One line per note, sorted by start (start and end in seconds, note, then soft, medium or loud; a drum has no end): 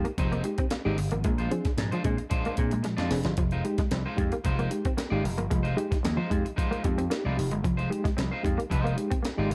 0.05 0.12 A#3 medium
0.05 0.10 D#4 soft
0.05 0.10 G4 soft
0.05 muted clean electric guitar stroke soft
0.05 closed hi-hat soft
0.18 0.41 F1 medium
0.18 0.30 F3 medium
0.18 0.43 C4 medium
0.18 0.43 D#4 loud
0.18 0.43 G#4 loud
0.18 0.44 C5 loud
0.18 kick medium
0.18 closed hi-hat medium
0.32 0.39 A#3 medium
0.32 closed hi-hat soft
0.44 0.57 G#3 medium
0.44 0.57 D#4 medium
0.44 0.57 G4 medium
0.44 muted clean electric guitar stroke soft
0.44 closed hi-hat medium
0.58 0.65 C4 medium
0.58 0.64 D#4 soft
0.58 0.64 G4 soft
0.58 muted clean electric guitar stroke soft
0.58 kick medium
0.58 closed hi-hat medium
0.70 0.79 A#3 medium
0.70 muted clean electric guitar stroke soft
0.70 snare loud
0.70 closed hi-hat medium
0.85 0.96 G#1 medium
0.85 0.96 G#3 medium
0.85 0.97 C4 medium
0.85 0.96 D#4 medium
0.85 0.97 D#4 medium
0.85 0.96 G4 medium
0.85 0.98 G#4 medium
0.85 0.99 D5 medium
0.98 1.10 G1 loud
0.98 muted clean electric guitar stroke medium
0.98 open hi-hat medium
1.11 1.23 G#1 loud
1.11 1.23 F3 medium
1.11 1.19 A#3 medium
1.11 muted clean electric guitar stroke soft
1.11 closed hi-hat soft
1.24 1.47 A#1 loud
1.24 1.37 A#2 medium
1.24 1.37 F3 medium
1.24 1.33 G#3 medium
1.24 muted clean electric guitar stroke soft
1.24 kick loud
1.24 closed hi-hat medium
1.38 1.50 G#3 medium
1.38 1.51 D4 medium
1.38 1.51 F4 medium
1.38 1.51 C5 medium
1.38 closed hi-hat soft
1.51 1.60 F3 medium
1.51 1.63 C4 medium
1.51 1.63 D4 medium
1.51 1.64 G#4 loud
1.51 muted clean electric guitar stroke soft
1.51 closed hi-hat medium
1.65 1.71 D4 soft
1.65 1.70 G#4 soft
1.65 muted clean electric guitar stroke soft
1.65 muted slap bass stroke medium
1.65 kick medium
1.65 snare soft
1.65 closed hi-hat soft
1.77 1.90 G#2 medium
1.77 1.90 A#2 medium
1.77 1.90 F3 medium
1.77 muted clean electric guitar stroke soft
1.77 snare loud
1.77 closed hi-hat medium
1.91 2.00 F3 medium
1.91 2.03 G#3 medium
1.91 2.03 D4 medium
1.91 2.03 F4 medium
1.91 2.03 C5 medium
1.91 closed hi-hat soft
2.04 2.17 A#2 medium
2.04 2.13 G#3 medium
2.04 2.17 C4 medium
2.04 2.17 D4 medium
2.04 2.17 G#4 medium
2.04 muted clean electric guitar stroke soft
2.04 kick medium
2.04 closed hi-hat medium
2.17 muted clean electric guitar stroke soft
2.17 closed hi-hat soft
2.30 2.44 A#2 medium
2.30 2.44 F3 medium
2.30 2.55 G#3 loud
2.30 2.55 D4 medium
2.30 2.56 F4 loud
2.30 2.56 C5 loud
2.30 kick medium
2.30 closed hi-hat medium
2.45 2.53 A#3 medium
2.45 closed hi-hat soft
2.57 2.81 A#2 loud
2.57 2.70 C4 medium
2.57 2.70 D4 medium
2.57 2.71 G#4 medium
2.57 muted clean electric guitar stroke soft
2.57 kick medium
2.57 closed hi-hat medium
2.71 2.80 G#3 medium
2.71 2.77 D4 soft
2.71 2.77 G#4 soft
2.71 muted clean electric guitar stroke soft
2.71 closed hi-hat medium
2.83 2.97 A#2 medium
2.83 2.97 F3 medium
2.83 2.93 G#3 medium
2.83 muted clean electric guitar stroke soft
2.83 snare medium
2.83 closed hi-hat medium
2.97 3.09 F2 medium
2.97 3.09 G#3 medium
2.97 3.10 D4 medium
2.97 3.10 F4 medium
2.97 3.11 D5 medium
2.97 snare medium
2.97 closed hi-hat soft
3.11 3.23 F1 loud
3.11 3.24 C4 medium
3.11 3.24 D4 medium
3.11 3.24 G#4 medium
3.11 muted clean electric guitar stroke soft
3.11 snare loud
3.11 open hi-hat medium
3.24 3.36 G1 loud
3.24 3.33 F3 medium
3.24 3.31 D4 soft
3.24 3.31 G#4 soft
3.24 muted clean electric guitar stroke soft
3.24 snare medium
3.24 closed hi-hat soft
3.37 3.61 F1 loud
3.37 3.46 F3 medium
3.37 3.50 F3 medium
3.37 muted clean electric guitar stroke soft
3.37 kick loud
3.37 closed hi-hat loud
3.51 3.63 G#3 medium
3.51 3.64 D#4 medium
3.51 3.64 F4 medium
3.51 3.64 C5 medium
3.51 closed hi-hat soft
3.64 3.77 G#3 medium
3.64 3.77 D#4 medium
3.64 3.77 G4 medium
3.64 muted clean electric guitar stroke soft
3.64 closed hi-hat medium
3.78 3.86 G#3 medium
3.78 3.84 D#4 soft
3.78 3.84 G4 soft
3.78 muted clean electric guitar stroke soft
3.78 muted slap bass stroke soft
3.78 kick medium
3.78 snare soft
3.78 closed hi-hat medium
3.91 4.04 C2 loud
3.91 4.04 F3 medium
3.91 3.99 C4 medium
3.91 muted clean electric guitar stroke soft
3.91 snare loud
3.91 closed hi-hat loud
4.06 4.17 G#3 medium
4.06 4.17 D#4 medium
4.06 4.17 F4 medium
4.06 4.18 C5 medium
4.06 muted clean electric guitar stroke soft
4.17 4.30 F2 loud
4.17 4.30 G#3 medium
4.17 4.30 D#4 medium
4.17 4.30 G4 medium
4.17 muted clean electric guitar stroke soft
4.17 kick medium
4.17 closed hi-hat medium
4.31 4.39 A#3 medium
4.31 4.37 D#4 soft
4.31 4.37 G4 soft
4.31 muted clean electric guitar stroke medium
4.31 closed hi-hat soft
4.44 4.67 F1 medium
4.44 4.56 F3 medium
4.44 4.69 G#3 medium
4.44 4.69 D#4 loud
4.44 4.70 F4 medium
4.44 4.70 C5 loud
4.44 kick medium
4.44 closed hi-hat medium
4.59 4.66 A#3 medium
4.59 closed hi-hat soft
4.70 4.83 G#3 medium
4.70 4.83 D#4 medium
4.70 4.83 G4 medium
4.70 muted clean electric guitar stroke medium
4.70 closed hi-hat medium
4.85 4.93 C4 medium
4.85 4.90 D#4 soft
4.85 4.90 G4 soft
4.85 muted clean electric guitar stroke soft
4.85 kick medium
4.85 closed hi-hat medium
4.97 5.05 A#3 medium
4.97 muted clean electric guitar stroke soft
4.97 snare loud
4.97 closed hi-hat medium
5.10 5.22 G#1 medium
5.10 5.22 G#3 medium
5.10 5.23 G#3 medium
5.10 5.23 D#4 medium
5.10 5.24 D#4 medium
5.10 5.24 F4 medium
5.10 5.23 G4 medium
5.10 5.24 D5 medium
5.24 5.38 F1 loud
5.24 muted clean electric guitar stroke soft
5.24 open hi-hat medium
5.38 5.49 G1 medium
5.38 5.49 F3 medium
5.38 5.45 A#3 medium
5.38 muted clean electric guitar stroke soft
5.38 closed hi-hat medium
5.50 5.74 F1 loud
5.50 5.63 F3 medium
5.50 5.59 G#3 medium
5.50 muted clean electric guitar stroke soft
5.50 kick loud
5.50 closed hi-hat medium
5.63 5.77 G#3 medium
5.63 5.77 D#4 medium
5.63 5.78 F4 medium
5.63 5.78 C5 medium
5.63 closed hi-hat soft
5.76 5.89 G#3 medium
5.76 5.85 G#3 medium
5.76 5.90 D#4 medium
5.76 5.90 G4 medium
5.76 muted clean electric guitar stroke soft
5.76 closed hi-hat medium
5.91 5.97 D#4 soft
5.91 5.97 G4 medium
5.91 muted clean electric guitar stroke medium
5.91 muted slap bass stroke medium
5.91 kick loud
5.91 snare soft
5.91 closed hi-hat medium
6.04 6.16 D#2 medium
6.04 6.17 F3 medium
6.04 muted clean electric guitar stroke soft
6.04 snare loud
6.04 closed hi-hat loud
6.17 6.25 F3 medium
6.17 6.29 G#3 medium
6.17 6.30 D#4 medium
6.17 6.30 F4 medium
6.17 6.30 C5 medium
6.30 6.43 F2 medium
6.30 6.38 G#3 medium
6.30 6.43 G#3 medium
6.30 6.43 D#4 medium
6.30 6.43 G4 medium
6.30 muted clean electric guitar stroke soft
6.30 kick medium
6.30 closed hi-hat medium
6.45 6.50 D#4 soft
6.45 6.50 G4 soft
6.45 muted clean electric guitar stroke soft
6.45 closed hi-hat soft
6.56 6.70 F3 soft
6.56 6.82 G#3 medium
6.56 6.82 D#4 loud
6.56 6.82 F4 loud
6.56 6.82 C5 loud
6.56 kick loud
6.56 closed hi-hat medium
6.71 6.78 A#3 medium
6.71 closed hi-hat soft
6.83 7.07 F2 loud
6.83 6.97 G#3 medium
6.83 6.97 D#4 medium
6.83 6.97 G4 medium
6.83 muted clean electric guitar stroke soft
6.83 kick medium
6.83 closed hi-hat medium
6.98 7.05 C4 medium
6.98 7.04 D#4 soft
6.98 7.04 G4 soft
6.98 muted clean electric guitar stroke soft
6.98 closed hi-hat medium
7.10 7.18 A#3 medium
7.10 7.23 D#4 medium
7.10 7.23 G4 medium
7.10 muted clean electric guitar stroke soft
7.10 snare loud
7.10 closed hi-hat medium
7.24 7.36 C2 medium
7.24 7.36 F3 medium
7.24 7.36 G#3 medium
7.24 7.37 D#4 medium
7.24 7.37 F4 medium
7.24 7.38 D5 medium
7.37 7.52 F1 loud
7.37 7.49 D#4 medium
7.37 7.50 G4 medium
7.37 muted clean electric guitar stroke soft
7.37 open hi-hat medium
7.51 7.63 G1 loud
7.51 7.59 G#3 medium
7.51 muted clean electric guitar stroke soft
7.51 closed hi-hat medium
7.63 7.87 F1 loud
7.63 7.76 F3 medium
7.63 7.72 F3 medium
7.63 muted clean electric guitar stroke soft
7.63 kick loud
7.63 closed hi-hat medium
7.77 7.89 G#3 medium
7.77 7.89 D#4 medium
7.77 7.90 F4 medium
7.77 7.90 C5 medium
7.77 closed hi-hat soft
7.90 8.02 G#3 medium
7.90 8.03 D#4 medium
7.90 8.03 G4 loud
7.90 muted clean electric guitar stroke soft
7.90 closed hi-hat medium
8.04 8.11 G#3 medium
8.04 8.10 D#4 soft
8.04 8.10 G4 medium
8.04 muted clean electric guitar stroke soft
8.04 muted slap bass stroke soft
8.04 kick loud
8.04 snare soft
8.04 closed hi-hat soft
8.17 8.30 C2 medium
8.17 8.29 F3 medium
8.17 8.25 C4 medium
8.17 muted clean electric guitar stroke soft
8.17 snare loud
8.17 closed hi-hat loud
8.31 8.42 G#3 medium
8.31 8.43 D#4 medium
8.31 8.43 F4 medium
8.31 8.43 C5 medium
8.31 muted clean electric guitar stroke soft
8.43 8.56 F2 medium
8.43 8.56 G#3 medium
8.43 8.56 D#4 medium
8.43 8.56 G4 medium
8.43 muted clean electric guitar stroke soft
8.43 kick medium
8.43 closed hi-hat medium
8.57 8.65 A#3 medium
8.57 8.63 D#4 soft
8.57 8.63 G4 soft
8.57 muted clean electric guitar stroke soft
8.57 closed hi-hat medium
8.70 8.94 F1 medium
8.70 8.83 F3 soft
8.70 8.95 G#3 medium
8.70 8.95 D#4 loud
8.70 8.95 F4 medium
8.70 8.96 C5 loud
8.70 kick loud
8.70 closed hi-hat medium
8.84 8.91 A#3 medium
8.84 closed hi-hat soft
8.96 9.09 G#3 medium
8.96 9.09 D#4 medium
8.96 9.09 G4 medium
8.96 muted clean electric guitar stroke soft
8.96 closed hi-hat medium
9.10 9.18 C4 medium
9.10 9.16 D#4 soft
9.10 9.16 G4 soft
9.10 muted clean electric guitar stroke soft
9.10 kick loud
9.10 closed hi-hat medium
9.23 9.31 A#3 medium
9.23 muted clean electric guitar stroke soft
9.23 snare loud
9.23 closed hi-hat medium
9.37 9.49 G#1 medium
9.37 9.49 G#3 medium
9.37 9.49 D#4 medium
9.37 9.50 D#4 medium
9.37 9.51 F4 medium
9.37 9.49 G4 loud
9.37 9.51 D5 medium
9.50 9.55 G1 loud
9.50 muted clean electric guitar stroke soft
9.50 open hi-hat medium